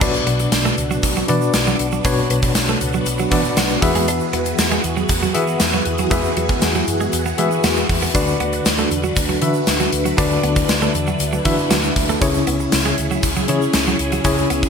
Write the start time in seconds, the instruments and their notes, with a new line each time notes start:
Already playing: tine electric piano C#5 F#5
0.01 fingered electric bass B1, tine electric piano B2 D4 F#4 B4 D5, string machine B3 D4 F#4, clean electric guitar D4, kick, crash, shaker
0.14 shaker
0.27 fingered electric bass B1, clean electric guitar B3, closed hi-hat
0.39 muted clean electric guitar stroke, closed hi-hat, shaker
0.52 fingered electric bass B1, snare, closed hi-hat, tambourine, shaker
0.65 clean electric guitar A3, shaker
0.78 fingered electric bass C#2, muted clean electric guitar stroke, closed hi-hat, shaker
0.91 clean electric guitar F#3, shaker
1.03 fingered electric bass B1, muted clean electric guitar stroke, kick, closed hi-hat, shaker
1.16 clean electric guitar F#3, shaker
1.28 fingered electric bass B2, clean electric guitar E3, tine electric piano D4 F#4 B4 D5, closed hi-hat
1.41 shaker
1.54 fingered electric bass B1, snare, closed hi-hat, tambourine, shaker
1.66 clean electric guitar F#3, shaker
1.79 fingered electric bass B1, muted clean electric guitar stroke, closed hi-hat
1.92 clean electric guitar F#3, shaker
2.04 fingered electric bass B1, tine electric piano B2 D4 F#4 B4 C#5, clean electric guitar D4, kick, closed hi-hat, shaker
2.17 shaker
2.30 fingered electric bass B1, clean electric guitar B3, closed hi-hat
2.42 muted clean electric guitar stroke, kick, closed hi-hat, shaker
2.55 fingered electric bass B1, snare, closed hi-hat, tambourine, shaker
2.68 clean electric guitar A3, shaker
2.81 fingered electric bass C#2, muted clean electric guitar stroke, closed hi-hat, shaker
2.93 clean electric guitar F#3, shaker
3.06 fingered electric bass B1, muted clean electric guitar stroke, closed hi-hat, shaker
3.19 clean electric guitar F#3, shaker
3.30 fingered electric bass B2, clean electric guitar E3, tine electric piano D4 F#4 B4 D5, kick, closed hi-hat
3.44 shaker
3.57 fingered electric bass B1, clean electric guitar F#3, snare, closed hi-hat, tambourine, shaker
3.70 muted clean electric guitar stroke, shaker
3.81 fingered electric bass E2, tine electric piano E3 F#4 G#4 B4 E5, string machine E3 G#4, kick, closed hi-hat
3.95 clean electric guitar G#3, closed hi-hat, shaker
4.08 clean electric guitar D4, closed hi-hat, shaker
4.20 shaker
4.33 fingered electric bass E2, clean electric guitar B3, closed hi-hat
4.46 muted clean electric guitar stroke, closed hi-hat, shaker
4.58 fingered electric bass E2, snare, closed hi-hat, tambourine, shaker
4.71 clean electric guitar G#3, shaker
4.84 fingered electric bass E2, muted clean electric guitar stroke, closed hi-hat, shaker
4.96 clean electric guitar F#3, shaker
5.09 fingered electric bass E2, muted clean electric guitar stroke, kick, closed hi-hat, shaker
5.22 clean electric guitar F#3, shaker
5.33 fingered electric bass E3, clean electric guitar E3, tine electric piano F#4 G#4 B4 E5, closed hi-hat
5.47 shaker
5.60 fingered electric bass E2, snare, closed hi-hat, tambourine, shaker
5.73 clean electric guitar F#3, shaker
5.85 fingered electric bass E2, tine electric piano E3, muted clean electric guitar stroke, closed hi-hat
5.98 clean electric guitar F#3, closed hi-hat, shaker
6.10 fingered electric bass E2, clean electric guitar G#3, tine electric piano F#4 G#4 B4 E5, kick, closed hi-hat, shaker
6.24 shaker
6.37 fingered electric bass E2, clean electric guitar F#3, closed hi-hat
6.49 muted clean electric guitar stroke, kick, shaker
6.62 fingered electric bass E2, snare, closed hi-hat, tambourine, shaker
6.74 clean electric guitar F#3, shaker
6.87 fingered electric bass F#2, muted clean electric guitar stroke, closed hi-hat, shaker
7.00 clean electric guitar G#3, shaker
7.13 fingered electric bass E2, muted clean electric guitar stroke, closed hi-hat, shaker
7.26 clean electric guitar B3, shaker
7.38 fingered electric bass E3, clean electric guitar G#3, tine electric piano F#4 G#4 B4 E5, closed hi-hat
7.51 shaker
7.64 fingered electric bass E2, clean electric guitar B3, snare, closed hi-hat, tambourine, shaker
7.76 muted clean electric guitar stroke, shaker
7.89 fingered electric bass E2, kick, open hi-hat
8.02 clean electric guitar B3, shaker
8.14 fingered electric bass D2, string machine D3 D4 B4, tine electric piano D3 D4 F#4 B4 D5, clean electric guitar D4, kick, closed hi-hat, shaker
8.27 shaker
8.40 fingered electric bass D2, clean electric guitar B3, closed hi-hat
8.53 muted clean electric guitar stroke, closed hi-hat, shaker
8.65 fingered electric bass D2, snare, closed hi-hat, tambourine, shaker
8.78 clean electric guitar A3, shaker
8.91 fingered electric bass E2, muted clean electric guitar stroke, closed hi-hat, shaker
9.03 clean electric guitar F#3, shaker
9.16 fingered electric bass D2, muted clean electric guitar stroke, kick, closed hi-hat, shaker
9.29 clean electric guitar F#3, shaker
9.41 fingered electric bass D3, clean electric guitar E3, tine electric piano D4 F#4 B4 E5, closed hi-hat
9.54 shaker
9.67 fingered electric bass D2, snare, closed hi-hat, tambourine, shaker
9.80 clean electric guitar F#3, shaker
9.93 fingered electric bass D2, muted clean electric guitar stroke, closed hi-hat
10.05 clean electric guitar F#3, closed hi-hat, shaker
10.17 fingered electric bass D2, tine electric piano D3 D4 F#4 B4 D5, clean electric guitar D4, string machine E4, kick, closed hi-hat, shaker
10.31 shaker
10.43 fingered electric bass D2, clean electric guitar B3, closed hi-hat
10.56 muted clean electric guitar stroke, kick, closed hi-hat, shaker
10.69 fingered electric bass D2, snare, closed hi-hat, tambourine, shaker
10.81 clean electric guitar A3, shaker
10.94 fingered electric bass E2, muted clean electric guitar stroke, closed hi-hat, shaker
11.07 clean electric guitar F#3, shaker
11.20 fingered electric bass D2, muted clean electric guitar stroke, closed hi-hat, shaker
11.32 clean electric guitar F#3, shaker
11.44 fingered electric bass D3, clean electric guitar E3, tine electric piano D4 F#4 B4 E5, kick, closed hi-hat
11.58 shaker
11.71 fingered electric bass D2, clean electric guitar F#3, snare, closed hi-hat, tambourine, shaker
11.83 muted clean electric guitar stroke, shaker
11.96 fingered electric bass D2, kick, closed hi-hat
12.09 clean electric guitar A3, shaker
12.21 fingered electric bass C#2, string machine C#3 C#4 G#4, tine electric piano C#3 C#4 E4 G#4 C#5, clean electric guitar C#4, kick, closed hi-hat, shaker
12.34 shaker
12.47 fingered electric bass C#2, clean electric guitar B3, closed hi-hat
12.60 muted clean electric guitar stroke, shaker
12.72 fingered electric bass C#2, snare, closed hi-hat, tambourine, shaker
12.85 clean electric guitar G#3, shaker
12.98 fingered electric bass D2, muted clean electric guitar stroke, closed hi-hat, shaker
13.11 clean electric guitar F#3, shaker
13.23 fingered electric bass C#2, muted clean electric guitar stroke, kick, closed hi-hat, shaker
13.36 clean electric guitar F#3, shaker
13.48 fingered electric bass C#3, clean electric guitar E3, tine electric piano C#4 E4 G#4 C#5, closed hi-hat
13.62 shaker
13.73 fingered electric bass C#2, snare, closed hi-hat, tambourine, shaker
13.87 clean electric guitar F#3, shaker
13.99 fingered electric bass C#2, muted clean electric guitar stroke, closed hi-hat
14.12 clean electric guitar F#3, closed hi-hat, shaker
14.24 fingered electric bass C#2, tine electric piano C#3 C#4 E4 G#4 C#5, clean electric guitar C#4, kick, closed hi-hat, shaker
14.38 shaker
14.50 fingered electric bass C#2, clean electric guitar B3, closed hi-hat, shaker
14.63 muted clean electric guitar stroke, kick, shaker